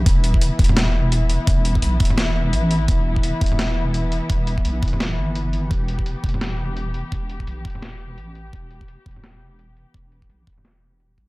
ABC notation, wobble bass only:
X:1
M:4/4
L:1/8
Q:"Swing 16ths" 1/4=170
K:Em
V:1 name="Wobble bass" clef=bass
E,,,2 z E,,,4 z | E,,,2 B,,, E,,,3 A,,,2 | E,,,2 z E,,,4 z | E,,,2 B,,, E,,,2 G,,,3 |
E,,,2 z E,,,4 z | E,,,2 B,,, E,,,3 A,,,2 | E,,,2 z E,,,4 z | E,,,2 B,,, E,,,4 B,,, |]